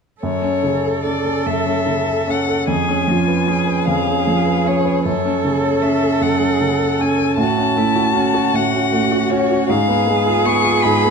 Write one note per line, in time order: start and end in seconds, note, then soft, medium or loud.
0.21 1.45 F#2 soft
0.21 2.64 A4 soft
0.21 1.01 C#5 soft
0.42 0.76 C#4 soft
0.63 0.96 C#3 soft
0.84 1.17 A4 soft
1.03 1.38 C#4 soft
1.03 1.48 D5 soft
1.25 1.58 A4 soft
1.46 2.65 F#2 soft
1.46 2.31 E5 medium
1.66 2.00 C#4 soft
1.86 2.20 C#3 soft
2.07 2.40 A4 soft
2.27 2.60 C#4 soft
2.27 2.69 F#5 soft
2.48 2.68 A4 soft
2.68 3.86 F2 soft
2.68 3.11 G#4 soft
2.68 3.86 G#5 medium
2.88 3.20 C#4 soft
3.08 3.40 F3 soft
3.08 3.50 F4 soft
3.28 3.60 B4 soft
3.47 3.80 C#4 soft
3.47 5.05 G#4 medium
3.66 3.99 B4 soft
3.87 5.01 F2 soft
3.87 4.68 F5 medium
4.07 4.39 C#4 soft
4.27 4.58 F3 soft
4.46 4.78 B4 soft
4.65 4.97 C#4 soft
4.65 5.04 C#5 soft
4.85 5.05 B4 soft
5.03 6.20 F#2 soft
5.03 7.37 A4 medium
5.03 5.84 C#5 soft
5.25 5.56 C#4 soft
5.44 5.75 C#3 soft
5.64 5.95 A4 soft
5.82 6.14 C#4 soft
5.82 6.24 E5 medium
6.02 6.33 A4 soft
6.21 7.34 F#2 soft
6.21 7.02 F#5 soft
6.41 6.72 C#4 soft
6.61 6.91 C#3 soft
6.79 7.11 A4 soft
6.99 7.30 C#4 soft
6.99 7.37 G#5 medium
7.18 7.38 A4 soft
7.37 8.52 A2 soft
7.37 7.79 F#4 soft
7.37 8.56 A5 medium
7.58 7.88 C#4 soft
7.76 8.07 A3 soft
7.76 8.14 E4 soft
7.96 8.27 F#4 soft
8.14 8.46 C#4 soft
8.14 9.71 F#4 medium
8.34 8.65 F#4 soft
8.53 9.65 A2 soft
8.53 9.32 F#5 medium
8.74 9.04 C#4 soft
8.92 9.23 A3 soft
9.12 9.42 F#4 soft
9.30 9.62 C#4 soft
9.30 9.68 C#5 medium
9.51 9.69 F#4 soft
9.69 10.83 G#2 soft
9.69 11.10 G#4 medium
9.69 10.47 F5 medium
9.88 10.18 B3 soft
10.07 10.37 G#3 soft
10.26 10.57 F4 soft
10.45 10.76 B3 soft
10.45 10.84 C#6 medium
10.64 10.95 F4 soft
10.82 11.10 G#2 soft
10.82 11.10 B5 medium
11.04 11.10 B3 soft